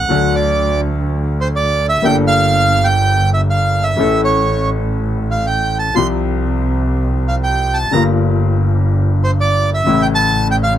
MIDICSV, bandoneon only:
0, 0, Header, 1, 2, 480
1, 0, Start_track
1, 0, Tempo, 484653
1, 113, Time_signature, 4, 2, 24, 8
1, 3471, Tempo, 489796
1, 10603, End_track
2, 0, Start_track
2, 0, Title_t, "Bandoneon"
2, 0, Program_c, 0, 23
2, 0, Note_on_c, 0, 78, 87
2, 350, Note_on_c, 0, 74, 71
2, 351, Note_off_c, 0, 78, 0
2, 799, Note_off_c, 0, 74, 0
2, 1396, Note_on_c, 0, 72, 76
2, 1467, Note_off_c, 0, 72, 0
2, 1544, Note_on_c, 0, 74, 80
2, 1847, Note_off_c, 0, 74, 0
2, 1872, Note_on_c, 0, 76, 93
2, 2032, Note_on_c, 0, 79, 99
2, 2038, Note_off_c, 0, 76, 0
2, 2141, Note_off_c, 0, 79, 0
2, 2252, Note_on_c, 0, 77, 104
2, 2815, Note_on_c, 0, 79, 91
2, 2838, Note_off_c, 0, 77, 0
2, 3269, Note_off_c, 0, 79, 0
2, 3305, Note_on_c, 0, 76, 73
2, 3379, Note_off_c, 0, 76, 0
2, 3469, Note_on_c, 0, 77, 77
2, 3793, Note_on_c, 0, 76, 83
2, 3800, Note_off_c, 0, 77, 0
2, 4164, Note_off_c, 0, 76, 0
2, 4195, Note_on_c, 0, 73, 65
2, 4639, Note_off_c, 0, 73, 0
2, 5241, Note_on_c, 0, 77, 64
2, 5389, Note_off_c, 0, 77, 0
2, 5392, Note_on_c, 0, 79, 64
2, 5698, Note_off_c, 0, 79, 0
2, 5711, Note_on_c, 0, 81, 74
2, 5868, Note_off_c, 0, 81, 0
2, 5874, Note_on_c, 0, 84, 88
2, 5986, Note_off_c, 0, 84, 0
2, 7171, Note_on_c, 0, 77, 66
2, 7244, Note_off_c, 0, 77, 0
2, 7322, Note_on_c, 0, 79, 74
2, 7620, Note_on_c, 0, 81, 83
2, 7657, Note_off_c, 0, 79, 0
2, 7800, Note_on_c, 0, 82, 87
2, 7802, Note_off_c, 0, 81, 0
2, 7910, Note_off_c, 0, 82, 0
2, 9090, Note_on_c, 0, 72, 76
2, 9160, Note_off_c, 0, 72, 0
2, 9254, Note_on_c, 0, 74, 82
2, 9543, Note_off_c, 0, 74, 0
2, 9584, Note_on_c, 0, 76, 81
2, 9856, Note_on_c, 0, 79, 92
2, 9858, Note_off_c, 0, 76, 0
2, 9905, Note_off_c, 0, 79, 0
2, 9981, Note_on_c, 0, 81, 98
2, 10303, Note_off_c, 0, 81, 0
2, 10338, Note_on_c, 0, 79, 90
2, 10386, Note_off_c, 0, 79, 0
2, 10456, Note_on_c, 0, 77, 86
2, 10559, Note_off_c, 0, 77, 0
2, 10603, End_track
0, 0, End_of_file